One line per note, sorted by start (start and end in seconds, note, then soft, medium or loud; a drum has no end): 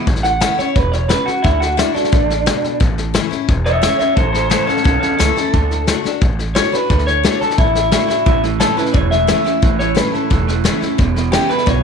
0.07 0.43 A1 loud
0.07 0.72 A2 medium
0.07 kick loud
0.07 snare soft
0.16 snare soft
0.23 0.57 F#5 loud
0.23 snare soft
0.40 0.57 E3 medium
0.40 0.58 A3 loud
0.40 0.58 C#4 loud
0.40 0.56 E4 loud
0.40 snare loud
0.40 hi-hat pedal medium
0.58 0.76 C#4 medium
0.58 0.75 E4 medium
0.58 0.76 C#5 medium
0.58 muted upright bass stroke medium
0.58 snare soft
0.76 1.12 E1 medium
0.76 1.08 B2 medium
0.76 0.92 B4 medium
0.76 kick loud
0.76 snare soft
0.92 1.09 C#5 medium
0.92 snare soft
1.09 1.42 C#3 medium
1.09 1.26 B4 medium
1.09 snare loud
1.09 hi-hat pedal medium
1.26 1.43 F#4 medium
1.26 muted upright bass stroke medium
1.26 snare soft
1.42 1.80 D2 loud
1.42 1.76 D3 medium
1.42 1.60 E4 medium
1.42 kick loud
1.42 snare soft
1.60 1.77 F#4 medium
1.60 snare soft
1.77 1.94 D3 medium
1.77 1.94 A3 medium
1.77 1.95 D4 medium
1.77 1.94 E4 medium
1.77 1.93 F#4 medium
1.77 snare loud
1.77 hi-hat pedal medium
1.94 2.78 D4 medium
1.94 2.12 D4 soft
1.94 2.11 F#4 medium
1.94 muted upright bass stroke medium
1.94 snare soft
2.04 snare soft
2.12 2.48 A1 medium
2.12 2.45 D3 medium
2.12 kick loud
2.12 snare soft
2.30 snare soft
2.46 2.79 B2 loud
2.46 snare loud
2.46 hi-hat pedal loud
2.64 muted upright bass stroke medium
2.64 snare soft
2.80 3.17 A1 loud
2.80 3.45 A2 medium
2.80 kick loud
2.80 snare soft
2.98 snare soft
3.14 3.31 E3 medium
3.14 3.31 A3 medium
3.14 3.31 C#4 medium
3.14 3.29 E4 loud
3.14 snare loud
3.14 hi-hat pedal loud
3.31 3.49 C#4 medium
3.31 3.48 E4 medium
3.31 muted upright bass stroke medium
3.31 snare soft
3.49 3.84 E1 medium
3.49 4.14 E2 medium
3.49 kick loud
3.49 snare soft
3.66 3.81 C#5 medium
3.66 3.82 E5 loud
3.66 snare soft
3.82 3.99 E3 medium
3.82 3.99 A3 loud
3.82 3.99 C#4 loud
3.82 3.98 E4 loud
3.82 3.97 C#5 medium
3.82 3.98 E5 medium
3.82 snare loud
3.82 hi-hat pedal loud
3.99 4.17 C#4 medium
3.99 4.16 E4 medium
3.99 4.15 C#5 medium
3.99 4.16 E5 loud
3.99 muted upright bass stroke medium
3.99 snare soft
4.16 4.53 A1 loud
4.16 4.82 A2 medium
4.16 4.31 A4 medium
4.16 4.32 C5 medium
4.16 kick loud
4.16 snare soft
4.32 4.49 A4 medium
4.32 4.50 C5 loud
4.32 snare soft
4.50 4.67 E3 medium
4.50 4.67 A3 medium
4.50 4.68 C#4 medium
4.50 4.66 E4 loud
4.50 4.66 A4 medium
4.50 4.67 C5 medium
4.50 snare loud
4.50 hi-hat pedal medium
4.66 4.82 C#4 medium
4.66 4.85 C#4 medium
4.66 4.84 E4 medium
4.66 4.83 A4 medium
4.66 muted upright bass stroke medium
4.66 snare soft
4.77 snare soft
4.83 5.00 B1 medium
4.83 5.50 E2 medium
4.83 4.99 C#4 medium
4.83 4.99 A4 medium
4.83 kick loud
4.83 snare soft
5.00 5.17 C#4 medium
5.00 5.16 A4 medium
5.00 snare soft
5.17 5.34 C#2 medium
5.17 5.35 E3 loud
5.17 5.36 A3 loud
5.17 5.36 C#4 medium
5.17 5.35 E4 loud
5.17 6.18 A4 medium
5.17 snare loud
5.17 hi-hat pedal medium
5.36 5.54 C#4 soft
5.36 5.53 E4 medium
5.36 muted upright bass stroke medium
5.36 snare soft
5.54 5.89 D2 medium
5.54 5.86 D3 medium
5.54 kick loud
5.54 snare soft
5.71 snare soft
5.87 6.04 D3 medium
5.87 6.04 A3 medium
5.87 6.05 D4 loud
5.87 6.03 F#4 medium
5.87 snare loud
5.87 hi-hat pedal medium
6.04 6.22 D4 medium
6.04 6.21 F#4 medium
6.04 muted upright bass stroke medium
6.04 snare soft
6.21 6.58 A1 medium
6.21 6.86 A2 medium
6.21 kick loud
6.21 snare soft
6.39 snare soft
6.55 6.72 D3 medium
6.55 6.72 A3 loud
6.55 6.73 D4 medium
6.55 6.71 F#4 loud
6.55 6.73 C#5 loud
6.55 snare loud
6.55 hi-hat pedal medium
6.72 6.90 D4 soft
6.72 6.89 F#4 medium
6.72 7.06 B4 medium
6.72 muted upright bass stroke medium
6.72 snare soft
6.90 7.26 D2 loud
6.90 7.22 D3 loud
6.90 kick loud
6.90 snare soft
6.99 snare soft
7.07 7.40 C#5 loud
7.07 snare soft
7.24 7.56 D3 medium
7.24 7.57 A3 medium
7.24 7.57 D4 medium
7.24 7.57 F#4 loud
7.24 snare loud
7.24 hi-hat pedal medium
7.41 7.58 A4 medium
7.41 muted upright bass stroke medium
7.41 snare soft
7.50 snare soft
7.58 7.94 A1 medium
7.58 8.23 A2 medium
7.58 7.91 E4 loud
7.58 kick loud
7.58 snare soft
7.75 snare soft
7.92 8.08 D3 medium
7.92 8.09 A3 loud
7.92 8.09 D4 loud
7.92 8.07 E4 loud
7.92 8.07 F#4 loud
7.92 snare loud
7.92 hi-hat pedal loud
8.08 8.26 D4 medium
8.08 8.42 E4 loud
8.08 8.25 F#4 medium
8.08 muted upright bass stroke medium
8.08 snare soft
8.26 8.62 A1 loud
8.26 8.91 A2 medium
8.26 8.42 A2 medium
8.26 8.42 E3 loud
8.26 kick loud
8.26 snare soft
8.43 8.58 A2 medium
8.43 8.59 E3 medium
8.43 snare soft
8.60 8.76 A2 medium
8.60 8.76 E3 medium
8.60 8.76 F#3 medium
8.60 8.77 A3 medium
8.60 8.77 C#4 medium
8.60 8.76 E4 loud
8.60 8.77 A4 loud
8.60 snare loud
8.60 hi-hat pedal medium
8.77 8.93 A2 medium
8.77 8.93 E3 medium
8.77 8.95 C#4 medium
8.77 8.94 E4 medium
8.77 8.93 B4 medium
8.77 muted upright bass stroke medium
8.77 snare soft
8.86 snare soft
8.93 9.30 E1 medium
8.93 9.59 E2 loud
8.93 9.10 A2 medium
8.93 9.10 E3 loud
8.93 9.10 C#5 loud
8.93 kick loud
8.93 snare soft
9.11 9.27 A2 medium
9.11 9.27 E3 medium
9.11 9.77 E5 loud
9.11 snare soft
9.27 9.44 A2 medium
9.27 9.44 E3 loud
9.27 9.44 E3 medium
9.27 9.45 A3 loud
9.27 9.45 C#4 medium
9.27 9.43 E4 loud
9.27 snare loud
9.27 hi-hat pedal medium
9.44 9.61 A2 medium
9.44 9.61 E3 medium
9.44 9.62 C#4 medium
9.44 9.61 E4 medium
9.44 muted upright bass stroke medium
9.44 snare soft
9.62 9.99 A1 loud
9.62 10.27 A2 loud
9.62 9.78 A2 medium
9.62 9.78 E3 loud
9.62 kick loud
9.62 snare soft
9.79 9.95 A2 medium
9.79 9.95 E3 medium
9.79 9.96 C#5 loud
9.79 snare soft
9.95 10.12 A2 medium
9.95 10.12 E3 medium
9.95 10.12 F#3 loud
9.95 10.12 A3 medium
9.95 10.13 C#4 medium
9.95 10.11 E4 loud
9.95 10.12 B4 loud
9.95 snare loud
9.95 hi-hat pedal medium
10.12 10.29 A2 medium
10.12 10.29 E3 medium
10.12 10.30 C#4 soft
10.12 10.29 E4 medium
10.12 10.46 A4 loud
10.12 muted upright bass stroke medium
10.12 snare soft
10.30 10.67 E1 medium
10.30 10.95 E2 medium
10.30 10.46 A2 medium
10.30 10.46 E3 loud
10.30 kick loud
10.30 snare soft
10.47 10.63 A2 medium
10.47 10.63 E3 medium
10.47 snare soft
10.64 10.80 A2 medium
10.64 10.81 E3 medium
10.64 10.80 E3 medium
10.64 10.81 A3 medium
10.64 10.81 C#4 medium
10.64 10.80 E4 loud
10.64 snare loud
10.64 hi-hat pedal medium
10.81 10.97 A2 medium
10.81 10.97 E3 medium
10.81 10.99 C#4 medium
10.81 10.98 E4 medium
10.81 muted upright bass stroke medium
10.81 snare soft
10.98 11.35 E1 loud
10.98 11.63 E2 medium
10.98 11.14 E2 medium
10.98 11.15 B2 loud
10.98 kick loud
10.98 snare soft
11.15 11.31 E2 medium
11.15 11.31 B2 medium
11.15 snare soft
11.32 11.48 E2 medium
11.32 11.48 C#3 medium
11.32 11.49 E3 medium
11.32 11.49 G#3 medium
11.32 11.49 B3 loud
11.32 11.48 E4 loud
11.32 11.49 G4 loud
11.32 snare loud
11.32 hi-hat pedal medium
11.49 11.65 E2 medium
11.49 11.66 B2 loud
11.49 11.67 B3 medium
11.49 11.66 E4 medium
11.49 11.67 B4 loud
11.49 muted upright bass stroke medium
11.49 snare soft
11.58 snare soft
11.66 11.81 B1 medium
11.66 11.82 E2 medium
11.66 11.83 B2 medium
11.66 11.83 C#5 loud
11.66 kick loud
11.66 snare soft